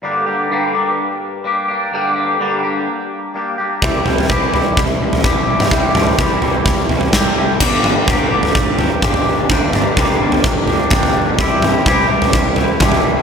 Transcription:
<<
  \new Staff \with { instrumentName = "Clean electric guitar" } { \time 4/4 \key g \dorian \tempo 4 = 127 <g, d g bes d' g'>8 <g bes d' g'>8 <g, d g bes d' g'>8 <g bes d' g'>4. <g bes d' g'>8 <g bes d' g'>8 | <g, d g bes d' g'>8 <g bes d' g'>8 <g, d g bes d' g'>8 <g bes d' g'>4. <g bes d' g'>8 <g bes d' g'>8 | <c e g e' g'>8 <g e' g'>8 <c e g e' g'>8 <g e' g'>4. <e g e' g'>8 <g e' g'>8 | <c e g e' g'>8 <g e' g'>8 <c e g e' g'>8 <g e' g'>4. <e g e' g'>8 <g e' g'>8 |
<g, d g bes d' g'>4 <g, d g bes d' g'>8 <g bes d' g'>4 <g bes d' g'>8 <g bes d' g'>4 | <g, d g bes d' g'>4 <g, d g bes d' g'>8 <g bes d' g'>4 <g bes d' g'>8 <g bes d' g'>4 | <c e g e' g'>4 <c e g e' g'>8 <g e' g'>4 <g e' g'>8 <e g e' g'>4 | }
  \new Staff \with { instrumentName = "Picked electric bass" } { \clef bass \time 4/4 \key g \dorian r1 | r1 | c,8 c,8 c,8 c,8 c,8 c,8 c,8 c,8 | c,8 c,8 c,8 c,8 c,8 c,8 c,8 c,8 |
g,,4 g,,8 g,,8 g,,4 g,,8 g,,8 | g,,4 c,8 g,,8 g,,4 g,,8 g,,8 | c,4 c,8 c,8 c,4 c,8 c,8 | }
  \new DrumStaff \with { instrumentName = "Drums" } \drummode { \time 4/4 r4 r4 r4 r4 | r4 r4 r4 r4 | <bd tomfh>8 tomfh16 tomfh16 <bd tomfh>8 tomfh8 <bd tomfh>8. tomfh16 bd8. toml16 | <bd tomfh>8 <tomfh toml>16 tomfh16 <bd tomfh>8 tomfh8 <bd tomfh>8 tomfh16 tomfh16 <bd sn tomfh toml>4 |
<cymc bd tomfh>8 toml8 <bd tomfh>8. tomfh16 bd8 tomfh8 <bd toml>16 tomfh8. | <bd tomfh>8 toml8 <bd tomfh>8. tomfh16 bd8 tomfh8 <bd toml>16 tomfh8. | <bd tomfh>8 toml8 <bd tomfh>8. tomfh16 bd8 tomfh8 <bd toml>16 tomfh8. | }
>>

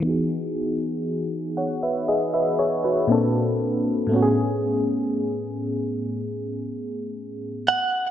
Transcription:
<<
  \new Staff \with { instrumentName = "Clean electric guitar" } { \time 4/4 \key a \lydian \tempo 4 = 59 r1 | r2. r8 fis''8 | }
  \new Staff \with { instrumentName = "FM electric piano" } { \time 4/4 \key a \lydian << { r4. <cis'' fis''>16 <b' e''>16 <gis' dis''>16 <b' e''>16 <gis' cis''>16 <fis' b'>8 r8. | r1 | } \\ { <e b dis' fis' gis'>2. <ais, ais bis d' a'>4 | <a, a b cis' fis' gis'>2.~ <a, a b cis' fis' gis'>8 r8 | } >> }
>>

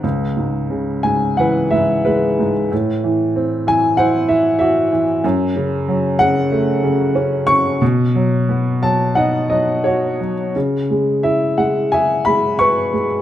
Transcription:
<<
  \new Staff \with { instrumentName = "Upright piano" } { \time 4/4 \key cis \minor \tempo 4 = 90 << { r4. gis''8 fis''8 e''8 b'8. r16 | r4. gis''8 fis''8 e''8 e''8. r16 | r4. fis''8 r4. cis'''8 | r4. a''8 fis''8 dis''8 cis''8. r16 |
r4 e''8 fis''8 gis''8 b''8 cis'''8. r16 | } \\ { r2 b'2 | r2 c''2 | r1 | r2 dis''2 |
r2 e''2 | } >> }
  \new Staff \with { instrumentName = "Upright piano" } { \clef bass \time 4/4 \key cis \minor cis,8 gis,8 cis8 gis,8 e8 gis,8 gis8 gis,8 | a,8 e8 c'8 e8 e'8 e8 fis'8 e8 | fis,8 cis8 fis8 cis8 a8 cis8 cis'8 cis8 | b,8 fis8 b8 fis8 dis'8 fis8 fis'8 fis8 |
cis8 gis8 e'8 gis8 gis'8 gis8 b'8 gis8 | }
>>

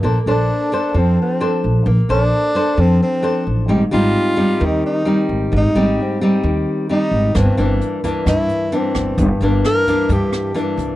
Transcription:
<<
  \new Staff \with { instrumentName = "Tenor saxophone" } { \time 4/4 \key bes \major \tempo 4 = 131 r8 d'4. c'8 c'4 r8 | r8 d'4. c'8 c'4 r8 | r8 f'4. ees'8 ees'4 r8 | ees'4 c'4 r4 ees'4 |
c'4 r4 e'4 c'4 | r4 bes'4 g'4 r4 | }
  \new Staff \with { instrumentName = "Nylon-string guitar" } { \time 4/4 \key bes \major << { <d' a' c''>8 <d' a' c''>4 <d' a' c''>4. <d' a' c''>4 | r8 <d' a' c''>4 <d' a' c''>4. <d' a' c''>4 | <g c' ees'>8 <g c' ees'>4 <g c' ees'>4. <g c' ees'>4~ | <g c' ees'>8 <g c' ees'>4 <g c' ees'>4. <g c' ees'>4 |
<e bes d'>8 <e bes d'>4 <e bes d'>4. <e bes d'>4~ | <e bes d'>8 <e bes d'>4 <e bes d'>4. <e bes d'>4 | } \\ { bes2 f2 | bes2 f2 | aes,2 ees2 | aes,2 ees2 |
g,2 g,2 | g,2 g,2 | } >> }
  \new Staff \with { instrumentName = "Upright bass" } { \clef bass \time 4/4 \key bes \major bes,,16 r16 bes,,8 r4 f,8 r4 bes,,8 | bes,,16 r16 bes,,8 r4 f,8 r4 a,,8 | aes,,16 r16 aes,,8 r4 ees,8 r4 aes,,8 | aes,,16 r16 aes,,8 r4 ees,8 r4 aes,,8 |
g,,16 r16 g,,8 r4 g,8 r4 g,,8 | g,,16 r16 g,,8 r4 g,8 r4 c,8 | }
  \new DrumStaff \with { instrumentName = "Drums" } \drummode { \time 4/4 r4 r4 r4 r4 | r4 r4 r4 r4 | r4 r4 r4 r4 | r4 r4 r4 r4 |
<hh bd ss>8 hh8 hh8 <hh bd>8 <hh bd ss>8 hh8 hh8 <hh bd ss>8 | <hh bd>8 hh8 <hh ss>8 <hh bd>8 <hh bd>8 <hh ss>8 hh8 <hh bd>8 | }
>>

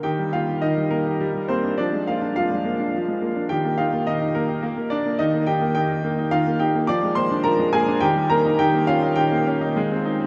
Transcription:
<<
  \new Staff \with { instrumentName = "Grand piano" } { \time 3/4 \key ees \major \tempo 4 = 105 <g' g''>8 <f' f''>8 <ees' ees''>8 <bes bes'>4 <c' c''>8 | <d' d''>8 <f' f''>8 <f' f''>2 | <g' g''>8 <f' f''>8 <ees' ees''>8 <bes bes'>4 <d' d''>8 | <ees' ees''>8 <g' g''>8 <g' g''>4 <f' f''>8 <g' g''>8 |
<d'' d'''>8 <c'' c'''>8 <bes' bes''>8 <aes' aes''>8 <g' g''>8 <bes' bes''>8 | <g' g''>8 <f' f''>8 <g' g''>4 r4 | }
  \new Staff \with { instrumentName = "Grand piano" } { \time 3/4 \key ees \major ees16 g16 bes16 g'16 ees16 g8 g'16 g16 g16 bes16 d'16 | f16 aes16 bes16 d'16 f16 aes16 bes16 d'16 f16 aes16 bes16 d'16 | ees16 bes16 ees'16 bes16 ees16 ees'8 ees'16 bes16 bes8 bes16 | ees16 bes16 ees'16 bes16 ees16 ees'16 bes16 ees'16 ees16 bes16 ees'16 bes16 |
f16 aes16 bes16 d'16 f16 aes16 bes16 d'16 ees16 g16 bes16 ees'16 | ees16 bes16 des'16 ees'16 ees16 bes16 des'16 ees'16 aes16 c'16 ees'16 c'16 | }
>>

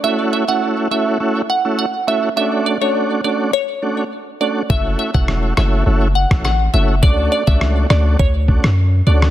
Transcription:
<<
  \new Staff \with { instrumentName = "Synth pluck" } { \time 4/4 \key fis \minor \tempo 4 = 103 e''16 r16 e''16 fis''16 r8 e''16 r8. fis''16 r16 fis''16 r16 e''16 r16 | e''16 r16 d''16 cis''16 r8 d''16 r16 cis''8. r8. d''16 r16 | e''16 r16 e''16 fis''16 r8 e''16 r8. fis''16 r16 fis''16 r16 e''16 r16 | d''16 r16 d''16 e''16 r8 d''16 r16 cis''8. r8. d''16 r16 | }
  \new Staff \with { instrumentName = "Tonewheel organ" } { \time 4/4 \key fis \minor <a cis' e' fis'>8. <a cis' e' fis'>8. <a cis' e' fis'>8 <a cis' e' fis'>16 r8 <a cis' e' fis'>16 r8 <a cis' e' fis'>16 r16 | <a cis' d' fis'>8. <a cis' d' fis'>8. <a cis' d' fis'>8 r8 <a cis' d' fis'>16 r8. <a cis' d' fis'>16 r16 | <a cis' e' fis'>8. <a cis' e' fis'>8. <a cis' e' fis'>8 <a cis' e' fis'>16 r8 <a cis' e' fis'>16 r8 <a cis' e' fis'>16 r16 | <a cis' d' fis'>8. <a cis' d' fis'>8. <a cis' d' fis'>8 r8 <a cis' d' fis'>16 r8. <a cis' d' fis'>16 r16 | }
  \new Staff \with { instrumentName = "808-style bass" } { \clef bass \time 4/4 \key fis \minor r1 | r1 | fis,,8 r16 e,,8. fis,,8 fis,,8. a,,8. fis,,8 | d,8 r16 cis,8. d,8 d,8. fis,8. d,8 | }
  \new DrumStaff \with { instrumentName = "Drums" } \drummode { \time 4/4 r4 r4 r4 r4 | r4 r4 r4 r4 | bd8. bd16 ss8 ss8 r8. <bd ss>16 ss4 | bd8. bd16 ss8 ss8 bd8 bd16 ss16 r8. ss16 | }
>>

